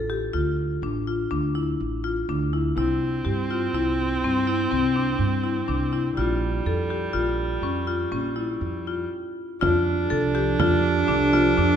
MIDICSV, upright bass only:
0, 0, Header, 1, 2, 480
1, 0, Start_track
1, 0, Key_signature, -1, "major"
1, 0, Tempo, 485437
1, 2744, Time_signature, 7, 2, 24, 8
1, 7544, Tempo, 493421
1, 11564, End_track
2, 0, Start_track
2, 0, Title_t, "Upright bass"
2, 0, Program_c, 0, 32
2, 0, Note_on_c, 0, 33, 61
2, 280, Note_off_c, 0, 33, 0
2, 336, Note_on_c, 0, 38, 68
2, 756, Note_off_c, 0, 38, 0
2, 812, Note_on_c, 0, 33, 63
2, 1234, Note_off_c, 0, 33, 0
2, 1298, Note_on_c, 0, 38, 72
2, 1717, Note_off_c, 0, 38, 0
2, 1783, Note_on_c, 0, 33, 64
2, 2200, Note_off_c, 0, 33, 0
2, 2261, Note_on_c, 0, 38, 77
2, 2678, Note_off_c, 0, 38, 0
2, 2735, Note_on_c, 0, 36, 82
2, 3152, Note_off_c, 0, 36, 0
2, 3219, Note_on_c, 0, 43, 71
2, 3633, Note_off_c, 0, 43, 0
2, 3692, Note_on_c, 0, 36, 68
2, 4111, Note_off_c, 0, 36, 0
2, 4186, Note_on_c, 0, 43, 67
2, 4598, Note_off_c, 0, 43, 0
2, 4666, Note_on_c, 0, 36, 73
2, 5077, Note_off_c, 0, 36, 0
2, 5132, Note_on_c, 0, 43, 66
2, 5550, Note_off_c, 0, 43, 0
2, 5620, Note_on_c, 0, 36, 73
2, 6036, Note_off_c, 0, 36, 0
2, 6105, Note_on_c, 0, 34, 78
2, 6519, Note_off_c, 0, 34, 0
2, 6584, Note_on_c, 0, 41, 61
2, 6999, Note_off_c, 0, 41, 0
2, 7060, Note_on_c, 0, 34, 63
2, 7479, Note_off_c, 0, 34, 0
2, 7532, Note_on_c, 0, 41, 65
2, 7951, Note_off_c, 0, 41, 0
2, 8017, Note_on_c, 0, 34, 64
2, 8438, Note_off_c, 0, 34, 0
2, 8497, Note_on_c, 0, 41, 63
2, 8926, Note_off_c, 0, 41, 0
2, 9485, Note_on_c, 0, 41, 84
2, 9897, Note_off_c, 0, 41, 0
2, 9955, Note_on_c, 0, 36, 76
2, 10369, Note_off_c, 0, 36, 0
2, 10427, Note_on_c, 0, 41, 70
2, 10842, Note_off_c, 0, 41, 0
2, 10908, Note_on_c, 0, 36, 74
2, 11320, Note_off_c, 0, 36, 0
2, 11384, Note_on_c, 0, 41, 72
2, 11564, Note_off_c, 0, 41, 0
2, 11564, End_track
0, 0, End_of_file